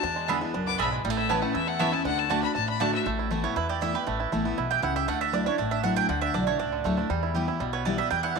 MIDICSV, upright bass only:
0, 0, Header, 1, 2, 480
1, 0, Start_track
1, 0, Key_signature, 2, "major"
1, 0, Tempo, 252313
1, 70, Time_signature, 4, 2, 24, 8
1, 15969, End_track
2, 0, Start_track
2, 0, Title_t, "Upright bass"
2, 0, Program_c, 0, 32
2, 59, Note_on_c, 0, 40, 93
2, 799, Note_off_c, 0, 40, 0
2, 1032, Note_on_c, 0, 37, 75
2, 1439, Note_off_c, 0, 37, 0
2, 1510, Note_on_c, 0, 35, 96
2, 1918, Note_off_c, 0, 35, 0
2, 1988, Note_on_c, 0, 33, 87
2, 2724, Note_off_c, 0, 33, 0
2, 2945, Note_on_c, 0, 40, 78
2, 3682, Note_off_c, 0, 40, 0
2, 3899, Note_on_c, 0, 38, 100
2, 4638, Note_off_c, 0, 38, 0
2, 4863, Note_on_c, 0, 33, 87
2, 5600, Note_off_c, 0, 33, 0
2, 5817, Note_on_c, 0, 33, 94
2, 6557, Note_off_c, 0, 33, 0
2, 6779, Note_on_c, 0, 40, 76
2, 7518, Note_off_c, 0, 40, 0
2, 7749, Note_on_c, 0, 33, 86
2, 8117, Note_off_c, 0, 33, 0
2, 8233, Note_on_c, 0, 33, 90
2, 8639, Note_off_c, 0, 33, 0
2, 8711, Note_on_c, 0, 35, 85
2, 9118, Note_off_c, 0, 35, 0
2, 9196, Note_on_c, 0, 37, 85
2, 9601, Note_off_c, 0, 37, 0
2, 9663, Note_on_c, 0, 38, 93
2, 10401, Note_off_c, 0, 38, 0
2, 10629, Note_on_c, 0, 33, 87
2, 11366, Note_off_c, 0, 33, 0
2, 11584, Note_on_c, 0, 38, 90
2, 11955, Note_off_c, 0, 38, 0
2, 12069, Note_on_c, 0, 35, 92
2, 12478, Note_off_c, 0, 35, 0
2, 12549, Note_on_c, 0, 37, 84
2, 12958, Note_off_c, 0, 37, 0
2, 13025, Note_on_c, 0, 38, 89
2, 13436, Note_off_c, 0, 38, 0
2, 13506, Note_on_c, 0, 40, 91
2, 14245, Note_off_c, 0, 40, 0
2, 14465, Note_on_c, 0, 35, 84
2, 15204, Note_off_c, 0, 35, 0
2, 15426, Note_on_c, 0, 40, 96
2, 15969, Note_off_c, 0, 40, 0
2, 15969, End_track
0, 0, End_of_file